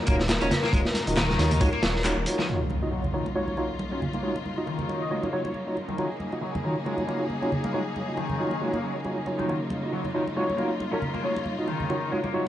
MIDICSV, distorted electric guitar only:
0, 0, Header, 1, 2, 480
1, 0, Start_track
1, 0, Key_signature, -6, "minor"
1, 0, Tempo, 437956
1, 803, Time_signature, 4, 2, 24, 8
1, 13679, End_track
2, 0, Start_track
2, 0, Title_t, "Distorted electric guitar"
2, 0, Program_c, 0, 30
2, 81, Note_on_c, 0, 58, 74
2, 165, Note_off_c, 0, 58, 0
2, 455, Note_on_c, 0, 61, 103
2, 521, Note_off_c, 0, 61, 0
2, 696, Note_on_c, 0, 58, 77
2, 792, Note_off_c, 0, 58, 0
2, 804, Note_on_c, 0, 56, 98
2, 853, Note_off_c, 0, 56, 0
2, 1279, Note_on_c, 0, 51, 89
2, 1751, Note_off_c, 0, 51, 0
2, 1763, Note_on_c, 0, 56, 100
2, 1813, Note_off_c, 0, 56, 0
2, 1896, Note_on_c, 0, 58, 77
2, 1991, Note_off_c, 0, 58, 0
2, 1999, Note_on_c, 0, 54, 98
2, 2084, Note_off_c, 0, 54, 0
2, 2617, Note_on_c, 0, 51, 79
2, 2682, Note_off_c, 0, 51, 0
2, 2721, Note_on_c, 0, 51, 75
2, 2772, Note_off_c, 0, 51, 0
2, 3203, Note_on_c, 0, 54, 99
2, 3286, Note_off_c, 0, 54, 0
2, 3441, Note_on_c, 0, 51, 98
2, 3525, Note_off_c, 0, 51, 0
2, 3682, Note_on_c, 0, 56, 94
2, 3732, Note_off_c, 0, 56, 0
2, 3924, Note_on_c, 0, 58, 73
2, 4006, Note_off_c, 0, 58, 0
2, 4300, Note_on_c, 0, 61, 93
2, 4364, Note_off_c, 0, 61, 0
2, 4537, Note_on_c, 0, 58, 71
2, 4632, Note_off_c, 0, 58, 0
2, 4642, Note_on_c, 0, 56, 94
2, 4692, Note_off_c, 0, 56, 0
2, 5122, Note_on_c, 0, 51, 81
2, 5592, Note_off_c, 0, 51, 0
2, 5603, Note_on_c, 0, 56, 92
2, 5653, Note_off_c, 0, 56, 0
2, 5738, Note_on_c, 0, 58, 72
2, 5833, Note_off_c, 0, 58, 0
2, 5844, Note_on_c, 0, 54, 95
2, 5926, Note_off_c, 0, 54, 0
2, 6456, Note_on_c, 0, 51, 73
2, 6522, Note_off_c, 0, 51, 0
2, 6560, Note_on_c, 0, 51, 75
2, 6611, Note_off_c, 0, 51, 0
2, 7040, Note_on_c, 0, 54, 98
2, 7124, Note_off_c, 0, 54, 0
2, 7281, Note_on_c, 0, 51, 95
2, 7365, Note_off_c, 0, 51, 0
2, 7519, Note_on_c, 0, 56, 98
2, 7571, Note_off_c, 0, 56, 0
2, 7758, Note_on_c, 0, 58, 68
2, 7843, Note_off_c, 0, 58, 0
2, 8136, Note_on_c, 0, 61, 94
2, 8202, Note_off_c, 0, 61, 0
2, 8375, Note_on_c, 0, 58, 71
2, 8471, Note_off_c, 0, 58, 0
2, 8479, Note_on_c, 0, 56, 93
2, 8531, Note_off_c, 0, 56, 0
2, 8964, Note_on_c, 0, 51, 79
2, 9433, Note_off_c, 0, 51, 0
2, 9443, Note_on_c, 0, 56, 97
2, 9493, Note_off_c, 0, 56, 0
2, 9578, Note_on_c, 0, 58, 73
2, 9673, Note_off_c, 0, 58, 0
2, 9681, Note_on_c, 0, 54, 94
2, 9765, Note_off_c, 0, 54, 0
2, 10296, Note_on_c, 0, 51, 69
2, 10362, Note_off_c, 0, 51, 0
2, 10402, Note_on_c, 0, 51, 76
2, 10452, Note_off_c, 0, 51, 0
2, 10881, Note_on_c, 0, 54, 100
2, 10965, Note_off_c, 0, 54, 0
2, 11120, Note_on_c, 0, 51, 96
2, 11204, Note_off_c, 0, 51, 0
2, 11364, Note_on_c, 0, 56, 97
2, 11413, Note_off_c, 0, 56, 0
2, 11600, Note_on_c, 0, 58, 71
2, 11684, Note_off_c, 0, 58, 0
2, 11973, Note_on_c, 0, 61, 93
2, 12040, Note_off_c, 0, 61, 0
2, 12216, Note_on_c, 0, 58, 73
2, 12312, Note_off_c, 0, 58, 0
2, 12322, Note_on_c, 0, 56, 92
2, 12372, Note_off_c, 0, 56, 0
2, 12800, Note_on_c, 0, 51, 81
2, 13271, Note_off_c, 0, 51, 0
2, 13278, Note_on_c, 0, 56, 97
2, 13330, Note_off_c, 0, 56, 0
2, 13413, Note_on_c, 0, 58, 73
2, 13510, Note_off_c, 0, 58, 0
2, 13519, Note_on_c, 0, 54, 93
2, 13604, Note_off_c, 0, 54, 0
2, 13679, End_track
0, 0, End_of_file